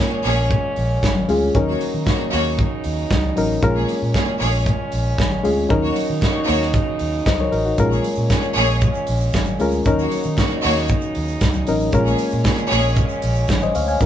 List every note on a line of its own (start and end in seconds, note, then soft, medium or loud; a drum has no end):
0.00 1.53 A#2 medium
0.00 0.12 G#3 medium
0.00 1.53 G#3 medium
0.00 0.13 C#4 medium
0.00 1.53 C#4 medium
0.00 0.13 F4 medium
0.00 0.13 A#4 medium
0.00 closed hi-hat medium
0.24 0.54 A#1 medium
0.24 0.47 A#3 medium
0.24 0.46 G#4 medium
0.24 0.47 C#5 loud
0.24 open hi-hat medium
0.51 kick loud
0.51 closed hi-hat medium
0.51 muted conga medium
0.51 low conga medium
0.76 0.97 A#1 medium
0.76 open hi-hat medium
1.03 1.22 G#1 medium
1.03 kick loud
1.03 snare loud
1.03 closed hi-hat medium
1.03 high conga medium
1.16 high conga medium
1.29 1.48 D2 medium
1.29 1.45 G#3 medium
1.29 1.45 C#4 medium
1.29 1.46 F4 medium
1.29 1.46 G#4 medium
1.29 open hi-hat medium
1.54 1.74 D#2 medium
1.54 3.60 C#3 medium
1.54 3.60 F#3 medium
1.54 2.21 F#3 medium
1.54 2.21 C#4 medium
1.54 3.61 D#4 medium
1.54 2.22 D#4 medium
1.54 2.22 A#4 medium
1.54 kick loud
1.54 closed hi-hat medium
1.54 muted conga soft
1.69 1.79 A#3 medium
1.69 1.79 F#4 medium
1.69 1.79 C#5 medium
1.81 open hi-hat medium
1.81 muted conga medium
1.94 2.04 D#3 medium
2.06 2.18 A#3 medium
2.06 2.18 F#4 medium
2.06 2.18 C#5 medium
2.06 kick loud
2.06 snare loud
2.06 closed hi-hat medium
2.06 high conga medium
2.32 2.62 D#2 loud
2.32 2.55 A#3 medium
2.32 2.55 F#4 medium
2.32 2.55 C#5 loud
2.32 open hi-hat medium
2.59 kick loud
2.59 closed hi-hat medium
2.59 muted conga medium
2.59 low conga medium
2.84 3.05 D#2 medium
2.84 open hi-hat medium
3.10 3.31 C#2 medium
3.10 kick loud
3.10 snare loud
3.10 closed hi-hat medium
3.10 high conga medium
3.24 high conga medium
3.36 3.57 A1 medium
3.36 3.53 F#3 medium
3.36 3.53 C#4 medium
3.36 3.54 D#4 medium
3.36 3.54 A#4 medium
3.36 open hi-hat medium
3.62 3.82 A#1 medium
3.62 5.68 A#2 medium
3.62 5.68 G#3 medium
3.62 4.29 G#3 medium
3.62 5.68 C#4 medium
3.62 4.29 C#4 medium
3.62 4.29 F4 medium
3.62 4.30 A#4 medium
3.62 kick loud
3.62 closed hi-hat medium
3.62 muted conga soft
3.76 3.87 A#3 medium
3.76 3.87 G#4 medium
3.76 3.87 C#5 medium
3.88 open hi-hat medium
3.88 muted conga medium
4.02 4.12 A#2 loud
4.14 4.26 A#3 medium
4.14 4.26 G#4 medium
4.14 4.25 C#5 medium
4.14 kick loud
4.14 snare loud
4.14 closed hi-hat medium
4.14 high conga medium
4.40 4.70 A#1 medium
4.40 4.62 A#3 medium
4.40 4.63 G#4 medium
4.40 4.63 C#5 loud
4.40 open hi-hat medium
4.66 kick loud
4.66 closed hi-hat medium
4.66 muted conga medium
4.66 low conga medium
4.92 5.12 A#1 medium
4.92 open hi-hat medium
5.18 5.38 G#1 medium
5.18 kick loud
5.18 snare loud
5.18 closed hi-hat medium
5.18 high conga medium
5.32 high conga medium
5.43 5.64 D2 medium
5.43 5.61 G#3 medium
5.43 5.61 C#4 medium
5.43 5.61 F4 medium
5.43 5.61 G#4 medium
5.43 open hi-hat medium
5.69 5.90 D#2 medium
5.69 7.76 C#3 medium
5.69 6.36 F#3 medium
5.69 7.76 F#3 medium
5.69 6.36 C#4 medium
5.69 6.37 D#4 medium
5.69 7.76 D#4 medium
5.69 6.37 A#4 loud
5.69 kick loud
5.69 closed hi-hat medium
5.69 muted conga soft
5.83 5.95 A#3 medium
5.83 5.94 F#4 medium
5.83 5.94 C#5 medium
5.96 open hi-hat medium
5.96 muted conga medium
6.10 6.19 D#3 medium
6.21 6.33 A#3 medium
6.21 6.33 F#4 medium
6.21 6.33 C#5 medium
6.21 kick loud
6.21 snare medium
6.21 closed hi-hat medium
6.21 high conga medium
6.47 6.78 D#2 medium
6.47 6.70 A#3 medium
6.47 6.70 F#4 medium
6.47 6.70 C#5 loud
6.47 open hi-hat medium
6.61 snare soft
6.74 kick loud
6.74 closed hi-hat medium
6.74 muted conga medium
6.74 low conga medium
6.99 7.20 D#2 medium
6.99 open hi-hat medium
7.26 7.46 C#2 medium
7.26 7.39 C5 soft
7.26 7.39 D#5 medium
7.26 kick loud
7.26 snare loud
7.26 closed hi-hat medium
7.26 high conga medium
7.40 7.51 A#4 medium
7.40 7.52 C#5 medium
7.40 high conga medium
7.52 7.72 A1 medium
7.52 7.64 F#4 medium
7.52 7.64 A#4 medium
7.52 open hi-hat medium
7.66 7.90 D#4 medium
7.66 7.90 F#4 medium
7.77 7.98 A#1 medium
7.77 9.83 A#2 medium
7.77 9.83 G#3 medium
7.77 8.45 G#3 medium
7.77 9.83 C#4 medium
7.77 8.45 C#4 medium
7.77 8.45 F4 medium
7.77 8.45 A#4 medium
7.77 kick loud
7.77 closed hi-hat medium
7.77 shaker medium
7.91 8.02 A#3 medium
7.91 8.02 G#4 medium
7.91 8.02 C#5 medium
7.91 shaker medium
8.04 open hi-hat medium
8.04 muted conga medium
8.04 shaker medium
8.16 8.27 A#2 medium
8.16 shaker medium
8.30 8.42 A#3 medium
8.30 8.42 G#4 medium
8.30 8.42 C#5 medium
8.30 kick loud
8.30 snare loud
8.30 closed hi-hat medium
8.30 high conga medium
8.30 shaker medium
8.42 shaker soft
8.55 8.85 A#1 medium
8.55 8.78 A#3 medium
8.55 8.78 G#4 loud
8.55 8.78 C#5 loud
8.55 open hi-hat medium
8.55 shaker medium
8.69 shaker soft
8.81 kick loud
8.81 closed hi-hat medium
8.81 muted conga medium
8.81 low conga medium
8.81 shaker medium
8.94 shaker medium
9.07 9.28 A#1 medium
9.07 open hi-hat medium
9.20 shaker medium
9.33 9.54 G#1 medium
9.33 kick loud
9.33 snare loud
9.33 closed hi-hat medium
9.33 high conga medium
9.33 shaker medium
9.45 high conga medium
9.45 shaker medium
9.59 9.80 D2 medium
9.59 9.76 G#3 medium
9.59 9.77 C#4 medium
9.59 9.77 F4 medium
9.59 9.77 A#4 medium
9.59 open hi-hat medium
9.59 shaker medium
9.71 shaker medium
9.84 10.05 D#2 loud
9.84 11.91 C#3 medium
9.84 11.91 F#3 medium
9.84 10.52 F#3 medium
9.84 10.52 C#4 medium
9.84 11.90 D#4 medium
9.84 10.53 D#4 medium
9.84 10.53 A#4 medium
9.84 kick loud
9.84 closed hi-hat medium
9.84 muted conga soft
9.84 shaker medium
9.99 10.10 A#3 medium
9.99 10.10 F#4 medium
9.99 10.10 C#5 medium
9.99 shaker medium
10.12 open hi-hat medium
10.12 muted conga medium
10.12 shaker medium
10.23 10.35 D#3 loud
10.23 shaker medium
10.37 10.49 A#3 medium
10.37 10.49 F#4 medium
10.37 10.49 C#5 medium
10.37 kick loud
10.37 snare loud
10.37 closed hi-hat medium
10.37 high conga medium
10.37 shaker medium
10.49 shaker soft
10.62 10.94 D#2 loud
10.62 10.86 A#3 medium
10.62 10.86 F#4 loud
10.62 10.86 C#5 loud
10.62 open hi-hat medium
10.62 shaker medium
10.76 snare soft
10.76 shaker soft
10.88 kick loud
10.88 closed hi-hat medium
10.88 muted conga medium
10.88 low conga medium
10.88 shaker medium
11.01 shaker soft
11.15 11.36 D#2 medium
11.15 open hi-hat medium
11.28 shaker medium
11.40 11.61 C#2 medium
11.40 kick loud
11.40 snare loud
11.40 closed hi-hat medium
11.40 high conga medium
11.40 shaker medium
11.53 high conga medium
11.53 shaker medium
11.67 11.88 A1 medium
11.67 11.84 F#3 medium
11.67 11.84 C#4 medium
11.67 11.85 D#4 medium
11.67 11.85 A#4 medium
11.67 open hi-hat medium
11.67 shaker medium
11.80 shaker medium
11.92 12.13 A#1 loud
11.92 13.99 A#2 medium
11.92 13.98 G#3 medium
11.92 12.60 G#3 medium
11.92 13.99 C#4 medium
11.92 12.60 C#4 medium
11.92 12.60 F4 medium
11.92 12.60 A#4 medium
11.92 kick loud
11.92 closed hi-hat medium
11.92 shaker medium
12.06 12.17 A#3 medium
12.06 12.17 G#4 medium
12.06 12.17 C#5 medium
12.06 shaker medium
12.18 open hi-hat medium
12.18 muted conga medium
12.18 shaker medium
12.30 12.43 A#2 loud
12.30 shaker medium
12.44 12.56 A#3 medium
12.44 12.56 G#4 medium
12.44 12.56 C#5 medium
12.44 kick loud
12.44 snare loud
12.44 closed hi-hat medium
12.44 high conga medium
12.44 shaker medium
12.57 shaker soft
12.70 13.01 A#1 loud
12.70 12.93 A#3 loud
12.70 12.93 G#4 loud
12.70 12.93 C#5 loud
12.70 open hi-hat medium
12.70 shaker medium
12.84 shaker soft
12.96 kick loud
12.96 closed hi-hat medium
12.96 muted conga medium
12.96 low conga medium
12.96 shaker medium
13.09 shaker medium
13.22 13.43 A#1 medium
13.22 open hi-hat medium
13.35 shaker medium
13.48 13.69 G#1 medium
13.48 kick loud
13.48 snare loud
13.48 closed hi-hat medium
13.48 high conga medium
13.48 shaker medium
13.61 13.75 C5 medium
13.61 13.75 D#5 medium
13.61 high conga medium
13.61 shaker soft
13.75 13.95 D2 medium
13.75 13.88 C#5 medium
13.75 13.88 F5 medium
13.75 open hi-hat medium
13.75 shaker medium
13.88 14.06 F5 medium
13.88 14.06 G#5 medium
13.88 shaker medium
14.00 14.06 D#2 medium
14.00 14.06 C#3 medium
14.00 14.06 F#3 medium
14.00 14.06 C#4 medium
14.00 14.06 D#4 medium
14.00 14.06 A#4 medium
14.00 kick loud
14.00 closed hi-hat medium
14.00 muted conga soft
14.00 shaker medium